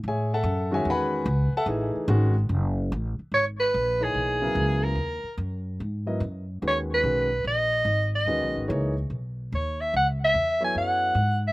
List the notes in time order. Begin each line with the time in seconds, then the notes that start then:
0.04 A2
0.08 G#4 C#5 E5 G#5
0.34 A4 E5 F#5 A5
0.44 F#2
0.71 D#3 G#3 C#4 F#4 G#5
0.75 G#4 C#5 E5
0.85 E2
0.90 B4 F#5 G#5 B5
1.25 C#2
1.52 muted upright bass stroke
1.57 A4 E5 F#5 A5
1.66 A1 E3 A3 D#4 G#4
1.95 muted upright bass stroke
2.08 G#1 D#3 G#3 C#4 F#4
2.49 F#1
2.92 A1
3.19 muted upright bass stroke
3.32 G#1 C#5
3.60 B4
3.74 A#1
4.00 E3 A#3 D#4 G#4 C#5
4.14 B1
4.41 C#3 F#3 B3 E4 A#4
4.55 C#2
4.84 A#4
4.95 D#2
5.24 muted upright bass stroke
5.38 F#2
5.80 G#2
6.06 F#3 B3 E4 A#4 D#5
6.20 F#2
6.62 D#2 D#3 G#3 C#4 F#4 B4
6.68 C#5
6.94 B4
7.04 B1 D#3 G#3 C#4 F#4 B4
7.44 A#1 D#5
7.85 G#1
8.15 D#5
8.26 D#2 D#3 G#3 C#4 F#4 B4
8.41 B1
8.56 G#1
8.68 C#2 E3 A#3 D#4 G#4 C#5
9.10 B1
9.52 D#2 C#5
9.81 E5
9.94 C#2 F#5
10.25 E5
10.34 E2
10.60 F#3 B3 E4 A4 C#5
10.64 G#5
10.75 F#2 F#5
11.15 G#2
11.47 E5